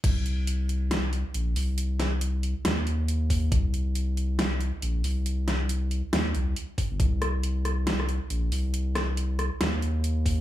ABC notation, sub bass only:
X:1
M:4/4
L:1/16
Q:"Swing 16ths" 1/4=138
K:Cm
V:1 name="Sub bass" clef=bass
C,,8- C,,3 z B,,,2 C,,2- | C,,6- C,, z E,,8 | C,,8- C,,3 z B,,,2 C,,2- | C,,6- C,, z E,,2 C,,2 z3 G,,, |
C,,8- C,,3 z B,,,2 C,,2- | C,,6- C,, z E,,8 |]